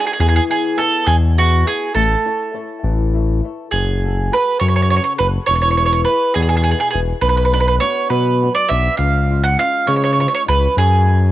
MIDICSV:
0, 0, Header, 1, 4, 480
1, 0, Start_track
1, 0, Key_signature, 3, "major"
1, 0, Tempo, 585366
1, 162, Time_signature, 6, 3, 24, 8
1, 3048, Key_signature, 3, "minor"
1, 6404, Tempo, 591716
1, 9250, End_track
2, 0, Start_track
2, 0, Title_t, "Mandolin"
2, 0, Program_c, 0, 25
2, 53, Note_on_c, 0, 68, 62
2, 97, Note_off_c, 0, 68, 0
2, 107, Note_on_c, 0, 68, 57
2, 155, Note_off_c, 0, 68, 0
2, 165, Note_on_c, 0, 68, 63
2, 223, Note_off_c, 0, 68, 0
2, 233, Note_on_c, 0, 68, 51
2, 284, Note_off_c, 0, 68, 0
2, 294, Note_on_c, 0, 68, 62
2, 354, Note_off_c, 0, 68, 0
2, 416, Note_on_c, 0, 68, 66
2, 639, Note_on_c, 0, 69, 81
2, 653, Note_off_c, 0, 68, 0
2, 874, Note_on_c, 0, 68, 77
2, 881, Note_off_c, 0, 69, 0
2, 942, Note_off_c, 0, 68, 0
2, 1135, Note_on_c, 0, 66, 69
2, 1369, Note_off_c, 0, 66, 0
2, 1372, Note_on_c, 0, 68, 71
2, 1584, Note_off_c, 0, 68, 0
2, 1596, Note_on_c, 0, 69, 68
2, 2780, Note_off_c, 0, 69, 0
2, 3045, Note_on_c, 0, 68, 67
2, 3552, Note_off_c, 0, 68, 0
2, 3553, Note_on_c, 0, 71, 72
2, 3765, Note_off_c, 0, 71, 0
2, 3768, Note_on_c, 0, 73, 76
2, 3831, Note_off_c, 0, 73, 0
2, 3841, Note_on_c, 0, 73, 54
2, 3891, Note_off_c, 0, 73, 0
2, 3900, Note_on_c, 0, 73, 61
2, 3944, Note_off_c, 0, 73, 0
2, 3954, Note_on_c, 0, 73, 55
2, 4010, Note_off_c, 0, 73, 0
2, 4020, Note_on_c, 0, 73, 60
2, 4059, Note_off_c, 0, 73, 0
2, 4068, Note_on_c, 0, 73, 60
2, 4121, Note_off_c, 0, 73, 0
2, 4131, Note_on_c, 0, 73, 61
2, 4196, Note_off_c, 0, 73, 0
2, 4250, Note_on_c, 0, 71, 73
2, 4315, Note_off_c, 0, 71, 0
2, 4480, Note_on_c, 0, 73, 71
2, 4545, Note_off_c, 0, 73, 0
2, 4554, Note_on_c, 0, 73, 56
2, 4595, Note_off_c, 0, 73, 0
2, 4605, Note_on_c, 0, 73, 61
2, 4669, Note_off_c, 0, 73, 0
2, 4679, Note_on_c, 0, 73, 49
2, 4723, Note_off_c, 0, 73, 0
2, 4733, Note_on_c, 0, 73, 66
2, 4792, Note_off_c, 0, 73, 0
2, 4802, Note_on_c, 0, 73, 57
2, 4850, Note_off_c, 0, 73, 0
2, 4860, Note_on_c, 0, 73, 69
2, 4919, Note_off_c, 0, 73, 0
2, 4958, Note_on_c, 0, 71, 76
2, 5184, Note_off_c, 0, 71, 0
2, 5198, Note_on_c, 0, 68, 76
2, 5256, Note_off_c, 0, 68, 0
2, 5266, Note_on_c, 0, 68, 55
2, 5311, Note_off_c, 0, 68, 0
2, 5321, Note_on_c, 0, 68, 68
2, 5375, Note_off_c, 0, 68, 0
2, 5385, Note_on_c, 0, 68, 59
2, 5430, Note_off_c, 0, 68, 0
2, 5439, Note_on_c, 0, 68, 57
2, 5493, Note_off_c, 0, 68, 0
2, 5502, Note_on_c, 0, 68, 53
2, 5566, Note_off_c, 0, 68, 0
2, 5576, Note_on_c, 0, 68, 75
2, 5636, Note_off_c, 0, 68, 0
2, 5662, Note_on_c, 0, 68, 68
2, 5729, Note_off_c, 0, 68, 0
2, 5915, Note_on_c, 0, 71, 73
2, 5969, Note_off_c, 0, 71, 0
2, 5978, Note_on_c, 0, 71, 60
2, 6035, Note_off_c, 0, 71, 0
2, 6045, Note_on_c, 0, 71, 64
2, 6099, Note_off_c, 0, 71, 0
2, 6109, Note_on_c, 0, 71, 52
2, 6169, Note_off_c, 0, 71, 0
2, 6179, Note_on_c, 0, 71, 71
2, 6225, Note_off_c, 0, 71, 0
2, 6234, Note_on_c, 0, 71, 58
2, 6287, Note_off_c, 0, 71, 0
2, 6297, Note_on_c, 0, 71, 64
2, 6355, Note_off_c, 0, 71, 0
2, 6398, Note_on_c, 0, 73, 91
2, 6636, Note_off_c, 0, 73, 0
2, 6639, Note_on_c, 0, 71, 70
2, 6984, Note_off_c, 0, 71, 0
2, 7003, Note_on_c, 0, 74, 76
2, 7115, Note_off_c, 0, 74, 0
2, 7116, Note_on_c, 0, 76, 89
2, 7345, Note_off_c, 0, 76, 0
2, 7348, Note_on_c, 0, 77, 73
2, 7719, Note_off_c, 0, 77, 0
2, 7723, Note_on_c, 0, 78, 88
2, 7845, Note_off_c, 0, 78, 0
2, 7849, Note_on_c, 0, 77, 96
2, 8065, Note_off_c, 0, 77, 0
2, 8077, Note_on_c, 0, 73, 72
2, 8139, Note_off_c, 0, 73, 0
2, 8150, Note_on_c, 0, 73, 48
2, 8200, Note_off_c, 0, 73, 0
2, 8210, Note_on_c, 0, 73, 63
2, 8271, Note_off_c, 0, 73, 0
2, 8284, Note_on_c, 0, 73, 55
2, 8334, Note_off_c, 0, 73, 0
2, 8344, Note_on_c, 0, 73, 65
2, 8398, Note_off_c, 0, 73, 0
2, 8408, Note_on_c, 0, 73, 59
2, 8451, Note_off_c, 0, 73, 0
2, 8461, Note_on_c, 0, 73, 67
2, 8516, Note_off_c, 0, 73, 0
2, 8573, Note_on_c, 0, 71, 76
2, 8791, Note_off_c, 0, 71, 0
2, 8813, Note_on_c, 0, 68, 72
2, 9250, Note_off_c, 0, 68, 0
2, 9250, End_track
3, 0, Start_track
3, 0, Title_t, "Nylon-string guitar"
3, 0, Program_c, 1, 24
3, 0, Note_on_c, 1, 62, 44
3, 0, Note_on_c, 1, 66, 42
3, 0, Note_on_c, 1, 69, 49
3, 119, Note_off_c, 1, 66, 0
3, 120, Note_off_c, 1, 62, 0
3, 120, Note_off_c, 1, 69, 0
3, 164, Note_on_c, 1, 52, 67
3, 402, Note_on_c, 1, 59, 45
3, 406, Note_on_c, 1, 64, 43
3, 408, Note_on_c, 1, 68, 45
3, 621, Note_off_c, 1, 59, 0
3, 629, Note_off_c, 1, 64, 0
3, 631, Note_off_c, 1, 68, 0
3, 631, Note_on_c, 1, 59, 54
3, 632, Note_off_c, 1, 52, 0
3, 638, Note_on_c, 1, 64, 50
3, 870, Note_on_c, 1, 47, 58
3, 1024, Note_off_c, 1, 59, 0
3, 1029, Note_off_c, 1, 64, 0
3, 1124, Note_on_c, 1, 59, 39
3, 1130, Note_on_c, 1, 64, 40
3, 1133, Note_on_c, 1, 68, 43
3, 1340, Note_off_c, 1, 59, 0
3, 1344, Note_off_c, 1, 47, 0
3, 1349, Note_off_c, 1, 64, 0
3, 1350, Note_on_c, 1, 59, 40
3, 1354, Note_off_c, 1, 68, 0
3, 1359, Note_on_c, 1, 64, 37
3, 1363, Note_on_c, 1, 68, 49
3, 1541, Note_off_c, 1, 59, 0
3, 1547, Note_off_c, 1, 64, 0
3, 1550, Note_off_c, 1, 68, 0
3, 1593, Note_on_c, 1, 57, 68
3, 1850, Note_on_c, 1, 64, 43
3, 1853, Note_on_c, 1, 69, 43
3, 1855, Note_on_c, 1, 73, 49
3, 2069, Note_off_c, 1, 57, 0
3, 2073, Note_off_c, 1, 64, 0
3, 2077, Note_off_c, 1, 73, 0
3, 2082, Note_on_c, 1, 64, 50
3, 2083, Note_off_c, 1, 69, 0
3, 2086, Note_on_c, 1, 73, 47
3, 2092, Note_on_c, 1, 69, 45
3, 2324, Note_on_c, 1, 52, 55
3, 2477, Note_off_c, 1, 64, 0
3, 2480, Note_off_c, 1, 73, 0
3, 2483, Note_off_c, 1, 69, 0
3, 2574, Note_on_c, 1, 64, 45
3, 2580, Note_on_c, 1, 69, 41
3, 2588, Note_on_c, 1, 73, 47
3, 2800, Note_off_c, 1, 52, 0
3, 2809, Note_off_c, 1, 64, 0
3, 2810, Note_off_c, 1, 69, 0
3, 2816, Note_off_c, 1, 73, 0
3, 2819, Note_on_c, 1, 64, 37
3, 2821, Note_on_c, 1, 69, 37
3, 2826, Note_on_c, 1, 73, 43
3, 3005, Note_off_c, 1, 64, 0
3, 3005, Note_off_c, 1, 69, 0
3, 3009, Note_off_c, 1, 73, 0
3, 3053, Note_on_c, 1, 54, 62
3, 3316, Note_on_c, 1, 66, 36
3, 3321, Note_on_c, 1, 68, 38
3, 3324, Note_on_c, 1, 69, 50
3, 3526, Note_off_c, 1, 54, 0
3, 3529, Note_off_c, 1, 66, 0
3, 3532, Note_off_c, 1, 68, 0
3, 3533, Note_off_c, 1, 69, 0
3, 3538, Note_on_c, 1, 66, 42
3, 3542, Note_on_c, 1, 69, 52
3, 3543, Note_on_c, 1, 68, 47
3, 3780, Note_on_c, 1, 49, 61
3, 3930, Note_off_c, 1, 66, 0
3, 3932, Note_off_c, 1, 68, 0
3, 3933, Note_off_c, 1, 69, 0
3, 4030, Note_on_c, 1, 66, 40
3, 4034, Note_on_c, 1, 68, 35
3, 4039, Note_on_c, 1, 69, 39
3, 4243, Note_off_c, 1, 66, 0
3, 4247, Note_off_c, 1, 68, 0
3, 4250, Note_off_c, 1, 49, 0
3, 4250, Note_off_c, 1, 69, 0
3, 4253, Note_on_c, 1, 66, 37
3, 4256, Note_on_c, 1, 68, 37
3, 4262, Note_on_c, 1, 69, 40
3, 4443, Note_off_c, 1, 66, 0
3, 4445, Note_off_c, 1, 68, 0
3, 4446, Note_off_c, 1, 69, 0
3, 4485, Note_on_c, 1, 52, 61
3, 4743, Note_on_c, 1, 64, 42
3, 4746, Note_on_c, 1, 68, 38
3, 4749, Note_on_c, 1, 71, 45
3, 4959, Note_off_c, 1, 52, 0
3, 4969, Note_off_c, 1, 71, 0
3, 4970, Note_off_c, 1, 64, 0
3, 4972, Note_off_c, 1, 68, 0
3, 4978, Note_on_c, 1, 64, 47
3, 4982, Note_on_c, 1, 71, 54
3, 4983, Note_on_c, 1, 68, 41
3, 5209, Note_on_c, 1, 47, 62
3, 5367, Note_off_c, 1, 71, 0
3, 5368, Note_off_c, 1, 64, 0
3, 5369, Note_off_c, 1, 68, 0
3, 5465, Note_on_c, 1, 64, 37
3, 5468, Note_on_c, 1, 68, 34
3, 5470, Note_on_c, 1, 71, 40
3, 5680, Note_off_c, 1, 47, 0
3, 5681, Note_off_c, 1, 64, 0
3, 5683, Note_off_c, 1, 68, 0
3, 5686, Note_off_c, 1, 71, 0
3, 5690, Note_on_c, 1, 64, 41
3, 5695, Note_on_c, 1, 68, 41
3, 5696, Note_on_c, 1, 71, 47
3, 5878, Note_off_c, 1, 64, 0
3, 5879, Note_off_c, 1, 68, 0
3, 5881, Note_off_c, 1, 71, 0
3, 5928, Note_on_c, 1, 47, 66
3, 6168, Note_on_c, 1, 59, 43
3, 6175, Note_on_c, 1, 62, 43
3, 6182, Note_on_c, 1, 66, 46
3, 6394, Note_off_c, 1, 59, 0
3, 6398, Note_off_c, 1, 47, 0
3, 6401, Note_off_c, 1, 66, 0
3, 6402, Note_off_c, 1, 62, 0
3, 6403, Note_on_c, 1, 59, 54
3, 6411, Note_on_c, 1, 62, 47
3, 6412, Note_on_c, 1, 66, 53
3, 6636, Note_on_c, 1, 54, 69
3, 6795, Note_off_c, 1, 59, 0
3, 6799, Note_off_c, 1, 62, 0
3, 6799, Note_off_c, 1, 66, 0
3, 6898, Note_on_c, 1, 59, 40
3, 6902, Note_on_c, 1, 62, 35
3, 6906, Note_on_c, 1, 66, 43
3, 7106, Note_off_c, 1, 59, 0
3, 7109, Note_off_c, 1, 62, 0
3, 7110, Note_off_c, 1, 54, 0
3, 7110, Note_off_c, 1, 66, 0
3, 7115, Note_on_c, 1, 59, 39
3, 7120, Note_on_c, 1, 66, 42
3, 7121, Note_on_c, 1, 62, 39
3, 7305, Note_off_c, 1, 59, 0
3, 7307, Note_off_c, 1, 62, 0
3, 7308, Note_off_c, 1, 66, 0
3, 7352, Note_on_c, 1, 49, 61
3, 7610, Note_on_c, 1, 56, 39
3, 7613, Note_on_c, 1, 61, 39
3, 7619, Note_on_c, 1, 65, 49
3, 7826, Note_off_c, 1, 49, 0
3, 7829, Note_off_c, 1, 61, 0
3, 7830, Note_off_c, 1, 56, 0
3, 7836, Note_off_c, 1, 65, 0
3, 7839, Note_on_c, 1, 56, 41
3, 7840, Note_on_c, 1, 61, 40
3, 7845, Note_on_c, 1, 65, 58
3, 8057, Note_off_c, 1, 56, 0
3, 8067, Note_on_c, 1, 56, 58
3, 8234, Note_off_c, 1, 61, 0
3, 8238, Note_off_c, 1, 65, 0
3, 8302, Note_off_c, 1, 56, 0
3, 8312, Note_on_c, 1, 56, 40
3, 8319, Note_on_c, 1, 61, 30
3, 8327, Note_on_c, 1, 65, 41
3, 8536, Note_off_c, 1, 56, 0
3, 8540, Note_off_c, 1, 61, 0
3, 8542, Note_off_c, 1, 65, 0
3, 8546, Note_on_c, 1, 56, 40
3, 8549, Note_on_c, 1, 61, 35
3, 8554, Note_on_c, 1, 65, 43
3, 8744, Note_off_c, 1, 56, 0
3, 8746, Note_off_c, 1, 61, 0
3, 8747, Note_off_c, 1, 65, 0
3, 8784, Note_on_c, 1, 54, 63
3, 9029, Note_on_c, 1, 66, 45
3, 9030, Note_on_c, 1, 68, 39
3, 9037, Note_on_c, 1, 69, 46
3, 9250, Note_off_c, 1, 54, 0
3, 9250, Note_off_c, 1, 66, 0
3, 9250, Note_off_c, 1, 68, 0
3, 9250, Note_off_c, 1, 69, 0
3, 9250, End_track
4, 0, Start_track
4, 0, Title_t, "Analog synth bass"
4, 0, Program_c, 2, 38
4, 162, Note_on_c, 2, 40, 97
4, 326, Note_off_c, 2, 40, 0
4, 877, Note_on_c, 2, 40, 87
4, 1344, Note_off_c, 2, 40, 0
4, 1602, Note_on_c, 2, 33, 96
4, 1765, Note_off_c, 2, 33, 0
4, 2325, Note_on_c, 2, 33, 95
4, 2797, Note_off_c, 2, 33, 0
4, 3053, Note_on_c, 2, 30, 92
4, 3523, Note_off_c, 2, 30, 0
4, 3781, Note_on_c, 2, 42, 91
4, 4096, Note_off_c, 2, 42, 0
4, 4263, Note_on_c, 2, 30, 77
4, 4414, Note_off_c, 2, 30, 0
4, 4500, Note_on_c, 2, 28, 83
4, 4964, Note_off_c, 2, 28, 0
4, 5213, Note_on_c, 2, 40, 94
4, 5528, Note_off_c, 2, 40, 0
4, 5697, Note_on_c, 2, 28, 73
4, 5847, Note_off_c, 2, 28, 0
4, 5919, Note_on_c, 2, 35, 84
4, 6390, Note_off_c, 2, 35, 0
4, 6641, Note_on_c, 2, 47, 97
4, 6957, Note_off_c, 2, 47, 0
4, 7129, Note_on_c, 2, 35, 62
4, 7279, Note_off_c, 2, 35, 0
4, 7360, Note_on_c, 2, 37, 87
4, 7828, Note_off_c, 2, 37, 0
4, 8084, Note_on_c, 2, 49, 90
4, 8402, Note_off_c, 2, 49, 0
4, 8574, Note_on_c, 2, 37, 74
4, 8726, Note_off_c, 2, 37, 0
4, 8806, Note_on_c, 2, 42, 95
4, 9250, Note_off_c, 2, 42, 0
4, 9250, End_track
0, 0, End_of_file